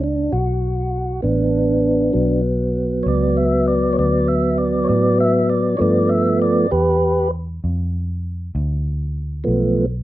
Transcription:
0.00 0.29 C#2 medium
0.00 0.32 D4 medium
0.33 1.21 B1 medium
0.33 1.21 F#4 medium
1.22 2.12 A1 medium
1.22 2.13 B3 medium
1.22 2.42 D4 medium
2.13 3.03 B1 medium
2.13 5.75 F#3 medium
2.13 5.76 B3 medium
3.03 3.95 C#2 medium
3.03 3.07 C#5 medium
3.08 3.36 D5 medium
3.37 3.66 E5 medium
3.68 3.97 D5 medium
3.93 3.97 C#5 medium
3.98 4.87 D2 medium
3.98 4.28 D5 medium
4.28 4.58 E5 medium
4.58 4.88 D5 medium
4.84 4.88 C#5 medium
4.89 5.78 A2 medium
4.89 5.18 D5 medium
5.20 5.49 E5 medium
5.50 5.79 D5 medium
5.77 6.69 G2 medium
5.77 6.67 F3 medium
5.77 6.67 A3 soft
5.77 6.67 B3 medium
5.77 5.81 C#5 medium
5.81 6.10 D5 medium
6.09 6.39 E5 medium
6.42 6.71 D5 medium
6.71 7.61 E2 medium
6.71 7.28 G4 medium
6.71 7.31 B4 medium
7.64 8.52 F2 medium
8.55 9.43 D2 medium
9.44 10.03 B1 medium
9.44 9.85 F3 medium
9.44 9.86 A3 medium
9.44 9.86 B3 medium

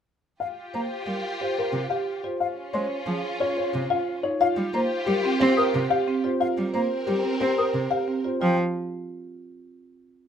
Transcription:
0.40 2.21 F4 medium
0.40 2.21 G4 medium
0.40 0.62 F5 medium
0.40 0.47 F5 medium
0.74 0.87 A#3 medium
0.74 0.96 C5 soft
0.74 0.81 A#5 medium
1.06 1.19 G3 medium
1.06 1.29 A#4 soft
1.40 1.62 G4 medium
1.40 1.63 C5 medium
1.57 1.80 A#4 medium
1.57 1.79 C5 medium
1.73 1.86 C3 medium
1.90 2.13 G4 medium
1.90 2.12 F5 medium
2.24 2.46 F4 medium
2.24 2.46 C5 medium
2.40 4.20 C#4 medium
2.40 4.20 F4 medium
2.40 2.62 F5 medium
2.40 2.47 F5 medium
2.74 2.87 G#3 medium
2.74 2.96 C5 medium
2.74 2.96 C#5 medium
2.74 2.80 C6 medium
3.06 3.19 F3 medium
3.06 3.29 G#4 medium
3.40 3.62 F4 medium
3.40 3.62 C#5 medium
3.57 3.79 C5 medium
3.74 3.87 C3 medium
3.90 4.12 F4 medium
3.90 4.12 F5 medium
4.23 4.46 D#4 medium
4.23 4.46 C#5 medium
4.40 6.20 F4 medium
4.40 4.63 F4 medium
4.40 6.20 G4 medium
4.40 4.47 F5 medium
4.40 4.63 F5 medium
4.57 4.70 G3 medium
4.73 4.86 A#3 medium
4.73 4.96 C5 medium
4.73 4.80 A#5 medium
5.06 5.20 G3 medium
5.06 5.29 G4 medium
5.06 5.29 A#4 medium
5.25 5.46 C4 medium
5.40 5.54 C4 medium
5.40 5.63 G4 medium
5.40 5.62 C5 loud
5.57 5.79 A#4 medium
5.57 5.79 C5 medium
5.57 5.63 D#6 medium
5.75 5.87 C3 medium
5.90 6.13 G4 medium
5.90 6.12 F5 medium
6.08 6.29 C4 medium
6.24 6.40 F4 medium
6.24 6.46 C5 medium
6.40 8.20 C4 medium
6.40 6.63 F4 medium
6.40 8.20 A#4 medium
6.40 6.62 F5 medium
6.40 6.47 F5 medium
6.57 6.70 G3 medium
6.73 6.87 A#3 medium
6.73 6.96 C5 medium
6.73 6.81 A#5 medium
7.07 7.20 G3 medium
7.07 7.29 G4 medium
7.07 7.29 A#4 medium
7.24 7.46 C4 medium
7.40 7.54 C4 medium
7.40 7.63 G4 medium
7.40 7.62 C5 medium
7.57 7.80 A#4 medium
7.57 7.79 C5 medium
7.57 7.64 D#6 medium
7.74 7.87 C3 medium
7.90 8.13 G4 medium
7.90 8.13 F5 medium
8.08 8.29 C4 medium
8.24 8.40 F4 medium
8.24 8.39 C5 medium
8.41 8.57 F3 medium
8.41 8.57 F4 medium
8.41 8.56 C5 medium
8.41 8.57 G5 medium

